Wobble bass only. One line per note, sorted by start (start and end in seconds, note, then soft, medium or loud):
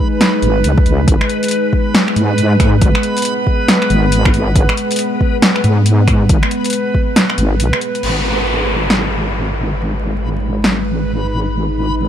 0.42 0.64 G#1 loud
0.64 0.77 C#2 loud
0.86 1.06 C#2 medium
1.08 1.20 G#1 loud
2.16 2.81 G#2 medium
2.82 2.94 G#1 loud
3.90 4.54 G#1 loud
4.56 4.68 G#1 loud
5.64 6.28 G#2 medium
6.29 6.42 G#1 loud
7.38 7.61 G#1 loud
7.60 7.72 B1 medium
8.03 12.08 G#1 medium